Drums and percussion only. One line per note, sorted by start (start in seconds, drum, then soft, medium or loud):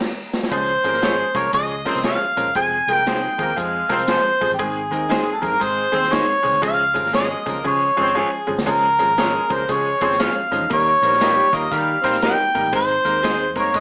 0.01 snare medium
0.33 snare loud
0.43 snare medium
0.52 kick loud
0.52 closed hi-hat medium
0.84 closed hi-hat medium
0.93 snare soft
1.03 snare medium
1.03 closed hi-hat medium
1.35 kick medium
1.35 closed hi-hat medium
1.53 kick medium
1.53 closed hi-hat medium
1.85 kick medium
1.85 closed hi-hat medium
1.95 snare soft
1.95 closed hi-hat medium
2.03 snare medium
2.03 closed hi-hat medium
2.37 closed hi-hat medium
2.55 kick loud
2.55 closed hi-hat medium
2.88 closed hi-hat medium
3.07 snare loud
3.07 closed hi-hat medium
3.39 kick medium
3.39 closed hi-hat medium
3.58 kick medium
3.58 closed hi-hat medium
3.90 kick medium
3.90 closed hi-hat medium
3.99 closed hi-hat soft
4.07 snare medium
4.07 closed hi-hat medium
4.41 kick medium
4.41 open hi-hat soft
4.59 kick loud
4.59 closed hi-hat medium
4.92 closed hi-hat medium
5.11 snare medium
5.11 closed hi-hat medium
5.43 kick medium
5.43 closed hi-hat medium
5.61 kick medium
5.61 closed hi-hat medium
5.93 kick medium
5.93 closed hi-hat medium
6.04 snare soft
6.04 closed hi-hat medium
6.12 snare medium
6.12 closed hi-hat medium
6.46 open hi-hat soft
6.55 closed hi-hat soft
6.63 kick loud
6.63 closed hi-hat medium
6.96 kick medium
6.96 closed hi-hat medium
7.06 snare soft
7.14 snare medium
7.14 closed hi-hat medium
7.47 kick medium
7.47 closed hi-hat medium
7.65 kick medium
8.59 snare medium
8.67 kick medium
8.67 closed hi-hat medium
8.99 closed hi-hat medium
9.18 snare medium
9.18 closed hi-hat medium
9.51 kick medium
9.51 closed hi-hat medium
9.69 kick medium
9.69 closed hi-hat medium
10.01 kick medium
10.01 closed hi-hat medium
10.13 snare soft
10.20 snare loud
10.20 closed hi-hat loud
10.53 closed hi-hat medium
10.71 kick loud
10.71 closed hi-hat medium
11.03 closed hi-hat medium
11.13 snare soft
11.21 snare medium
11.21 closed hi-hat medium
11.53 kick medium
11.53 closed hi-hat medium
11.71 kick medium
11.71 closed hi-hat medium
12.04 kick medium
12.04 closed hi-hat medium
12.13 snare soft
12.13 closed hi-hat medium
12.22 snare loud
12.22 closed hi-hat loud
12.55 kick medium
12.55 open hi-hat soft
12.73 kick loud
12.73 closed hi-hat medium
13.05 closed hi-hat medium
13.24 snare medium
13.24 closed hi-hat medium
13.56 kick medium
13.56 closed hi-hat medium
13.74 kick medium
13.74 closed hi-hat medium